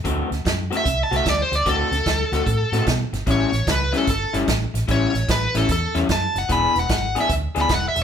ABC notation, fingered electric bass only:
X:1
M:4/4
L:1/8
Q:"Swing" 1/4=149
K:Amix
V:1 name="Fingered electric bass" clef=bass
D,, D,, F,,2 =C,, C,, D,, D,, | D,, D,, D,, D,, A,, A,, B,, G,,, | A,,, A,,, C,,2 G,,, G,,, A,,, A,,, | A,,, A,,, A,,, A,,, E,, E,, F,, F,,, |
E,,, E,,, ^G,,,2 D,, D,, E,,, E,,, |]